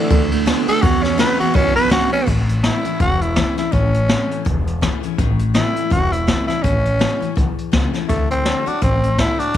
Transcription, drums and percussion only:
0.10 kick, ride
0.32 ride
0.47 snare, ride
0.68 ride
0.83 kick, ride
1.04 snare, ride
1.19 snare, ride
1.40 ride
1.55 kick, ride
1.77 ride
1.91 kick, snare, ride
2.13 ride
2.27 kick, crash
2.49 closed hi-hat
2.64 snare, closed hi-hat
2.85 closed hi-hat
3.00 kick, closed hi-hat
3.21 closed hi-hat
3.36 kick, snare, closed hi-hat
3.57 snare, closed hi-hat
3.73 kick, closed hi-hat
3.94 closed hi-hat
4.09 snare, closed hi-hat
4.31 closed hi-hat
4.46 kick, closed hi-hat
4.67 closed hi-hat
4.82 kick, snare, closed hi-hat
5.03 closed hi-hat
5.18 kick, closed hi-hat
5.39 closed hi-hat
5.55 snare, closed hi-hat
5.76 closed hi-hat
5.91 kick, closed hi-hat
6.13 closed hi-hat
6.28 kick, snare, closed hi-hat
6.49 snare, closed hi-hat
6.64 kick, closed hi-hat
6.85 closed hi-hat
7.01 snare, closed hi-hat
7.22 closed hi-hat
7.37 kick, closed hi-hat
7.58 closed hi-hat
7.73 kick, snare, closed hi-hat
7.94 snare, closed hi-hat
8.09 kick, closed hi-hat
8.31 closed hi-hat
8.45 snare, closed hi-hat
8.67 closed hi-hat
8.82 kick, closed hi-hat
9.03 closed hi-hat
9.18 kick, snare, closed hi-hat
9.40 closed hi-hat
9.54 closed hi-hat

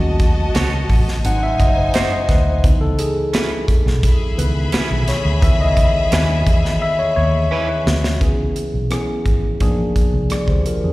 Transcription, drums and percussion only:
0.20 kick, closed hi-hat
0.55 snare, closed hi-hat
0.90 kick, open hi-hat
1.08 snare
1.25 closed hi-hat
1.60 kick, closed hi-hat
1.94 snare, closed hi-hat
2.29 kick, snare, closed hi-hat
2.64 kick, closed hi-hat
2.99 closed hi-hat
3.34 snare, closed hi-hat
3.68 kick, closed hi-hat
3.87 snare
4.03 kick, closed hi-hat
4.39 closed hi-hat
4.72 snare, closed hi-hat
5.08 snare, closed hi-hat
5.42 kick, closed hi-hat
5.77 kick, closed hi-hat
6.12 snare, closed hi-hat
6.47 kick, closed hi-hat
6.65 snare
7.87 snare
8.04 snare
8.21 kick, closed hi-hat
8.56 closed hi-hat
8.91 cross-stick, closed hi-hat
9.26 kick, closed hi-hat
9.60 kick, closed hi-hat
9.96 kick, closed hi-hat
10.30 cross-stick, closed hi-hat
10.48 kick
10.66 closed hi-hat

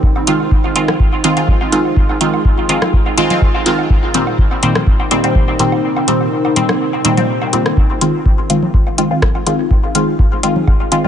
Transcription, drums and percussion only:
0.03 kick
0.16 low woodblock
0.27 closed hi-hat
0.40 low woodblock
0.51 kick
0.64 low woodblock
0.76 closed hi-hat
0.88 cross-stick, low conga, low woodblock
1.00 kick
1.13 low woodblock
1.24 closed hi-hat
1.37 closed hi-hat, low woodblock
1.48 kick, low conga
1.61 low woodblock
1.72 closed hi-hat
1.85 low woodblock
1.97 kick
2.09 low woodblock
2.21 closed hi-hat
2.34 low woodblock
2.45 kick
2.58 low woodblock
2.69 closed hi-hat
2.82 cross-stick, low conga, low woodblock
2.93 kick
3.06 low woodblock
3.18 closed hi-hat
3.30 closed hi-hat, low conga, low woodblock
3.42 kick
3.55 low woodblock
3.66 closed hi-hat
3.79 low woodblock
3.90 kick
4.03 low woodblock
4.14 closed hi-hat
4.27 low woodblock
4.39 kick
4.51 low woodblock
4.63 closed hi-hat
4.75 cross-stick, low conga, low woodblock
4.87 kick
5.00 low woodblock
5.11 closed hi-hat
5.24 closed hi-hat, low woodblock
5.35 kick, low conga
5.48 low woodblock
5.59 closed hi-hat
5.72 low woodblock
5.97 low woodblock
6.08 closed hi-hat
6.21 low woodblock
6.45 low woodblock
6.56 closed hi-hat
6.69 cross-stick, low conga, low woodblock
6.93 low woodblock
7.05 closed hi-hat
7.17 closed hi-hat, low conga, low woodblock
7.42 low woodblock
7.53 closed hi-hat
7.66 cross-stick, low woodblock
7.77 kick
8.01 closed hi-hat
8.26 kick
8.50 closed hi-hat
8.63 low conga
8.74 kick
8.87 low woodblock
8.98 closed hi-hat
9.22 kick, cross-stick, low conga
9.35 low woodblock
9.47 closed hi-hat
9.71 kick
9.95 closed hi-hat, low woodblock
10.19 kick
10.43 closed hi-hat
10.56 low conga
10.68 kick, low woodblock
10.92 closed hi-hat
11.04 low conga

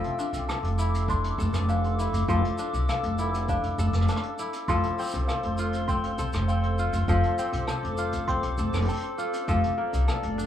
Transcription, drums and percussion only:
0.04 closed hi-hat
0.19 shaker
0.34 closed hi-hat, shaker
0.49 cross-stick, shaker
0.64 closed hi-hat
0.79 shaker
0.94 closed hi-hat, shaker
1.08 kick, shaker
1.24 closed hi-hat
1.38 kick, shaker
1.54 cross-stick, closed hi-hat, shaker
1.69 shaker
1.84 closed hi-hat
2.00 shaker
2.14 closed hi-hat, shaker
2.28 kick, shaker
2.45 closed hi-hat
2.58 shaker
2.74 shaker
2.89 cross-stick, closed hi-hat, shaker
3.03 closed hi-hat
3.18 shaker
3.34 closed hi-hat, shaker
3.48 kick, shaker
3.63 closed hi-hat
3.79 shaker
3.94 cross-stick, shaker
4.01 cross-stick
4.08 cross-stick, closed hi-hat, shaker
4.16 cross-stick
4.23 closed hi-hat
4.39 shaker
4.53 closed hi-hat, shaker
4.68 kick, shaker
4.83 closed hi-hat
4.99 shaker
5.01 shaker
5.03 shaker
5.06 shaker
5.08 shaker
5.11 closed hi-hat, shaker
5.14 shaker
5.29 cross-stick, shaker
5.43 closed hi-hat
5.58 shaker
5.73 closed hi-hat, shaker
5.88 kick, shaker
6.03 closed hi-hat
6.18 kick, shaker
6.33 cross-stick, closed hi-hat, shaker
6.49 shaker
6.63 closed hi-hat
6.78 shaker
6.93 closed hi-hat, shaker
7.08 kick, shaker
7.23 closed hi-hat
7.39 shaker
7.53 closed hi-hat
7.67 cross-stick, shaker
7.84 closed hi-hat
7.98 shaker
8.12 kick, closed hi-hat, shaker
8.28 kick, shaker
8.43 closed hi-hat
8.58 shaker
8.74 cross-stick, closed hi-hat, shaker
8.78 closed hi-hat
8.82 closed hi-hat
8.85 closed hi-hat, shaker
8.89 closed hi-hat
8.93 closed hi-hat
8.95 closed hi-hat
9.01 closed hi-hat
9.19 shaker
9.33 closed hi-hat, shaker
9.48 kick, shaker
9.64 closed hi-hat
9.93 closed hi-hat, shaker
10.08 cross-stick, shaker
10.23 closed hi-hat
10.39 shaker

